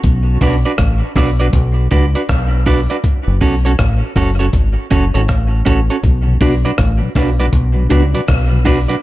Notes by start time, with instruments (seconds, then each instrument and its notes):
0.04 fingered electric bass B1, kick, closed hi-hat
0.41 fingered electric bass B1, clean electric guitar D4 F#4 B4 D5, kick, open hi-hat
0.65 clean electric guitar D4 F#4 B4 D5, closed hi-hat
0.78 fingered electric bass A1, kick, cross-stick, closed hi-hat
1.16 fingered electric bass B1, clean electric guitar D4 F#4 B4 D5, kick, cross-stick, open hi-hat
1.40 clean electric guitar D4 F#4 B4 D5, closed hi-hat
1.53 fingered electric bass B1, kick, closed hi-hat
1.91 fingered electric bass C#2, clean electric guitar D4 F#4 B4 D5, kick, closed hi-hat
2.15 clean electric guitar D4 F#4 B4 D5, closed hi-hat
2.29 fingered electric bass B1, kick, cross-stick, closed hi-hat
2.66 clean electric guitar D4 F#4 B4 D5, kick, open hi-hat
2.90 clean electric guitar D4 F#4 B4 D5, closed hi-hat
3.04 kick, closed hi-hat
3.27 fingered electric bass F#1
3.41 fingered electric bass B1, clean electric guitar C#4 F#4 A4 C#5, kick, open hi-hat
3.65 clean electric guitar C#4 F#4 A4 C#5, closed hi-hat
3.79 fingered electric bass A1, kick, cross-stick, closed hi-hat
4.16 fingered electric bass F#1, clean electric guitar C#4 F#4 A4 C#5, kick, open hi-hat
4.39 clean electric guitar C#4 F#4 A4 C#5, closed hi-hat
4.53 fingered electric bass G#1, kick, closed hi-hat
4.91 fingered electric bass F#1, clean electric guitar C#4 F#4 A4 C#5, kick, closed hi-hat
5.14 fingered electric bass G#1, clean electric guitar C#4 F#4 A4 C#5, closed hi-hat
5.28 fingered electric bass A1, kick, cross-stick, closed hi-hat
5.66 fingered electric bass A1, clean electric guitar C#4 F#4 A4 C#5, kick, closed hi-hat
5.90 clean electric guitar C#4 F#4 A4 C#5, closed hi-hat
6.03 fingered electric bass B1, kick, closed hi-hat
6.27 tonewheel organ B2 F#3
6.41 fingered electric bass B1, tonewheel organ B3 D4 F#4, clean electric guitar D4 F#4 B4 D5, kick, open hi-hat
6.65 tonewheel organ B2 F#3, clean electric guitar D4 F#4 B4 D5, closed hi-hat
6.78 fingered electric bass A1, kick, cross-stick, closed hi-hat
7.02 tonewheel organ B2 F#3
7.15 fingered electric bass B1, tonewheel organ B3 D4 F#4, clean electric guitar D4 F#4 B4 D5, kick, cross-stick, open hi-hat
7.39 tonewheel organ B2 F#3, clean electric guitar D4 F#4 B4 D5, closed hi-hat
7.53 fingered electric bass B1, kick, closed hi-hat
7.76 tonewheel organ B2 F#3
7.89 fingered electric bass C#2, tonewheel organ B3 D4 F#4, clean electric guitar D4 F#4 B4 D5, kick, closed hi-hat
8.14 tonewheel organ B2 F#3, clean electric guitar D4 F#4 B4 D5, closed hi-hat
8.28 fingered electric bass B1, kick, cross-stick, closed hi-hat
8.51 tonewheel organ B2 F#3
8.64 tonewheel organ B3 D4 F#4, clean electric guitar D4 F#4 B4 D5, kick, open hi-hat
8.88 tonewheel organ B2 F#3, clean electric guitar D4 F#4 B4 D5, closed hi-hat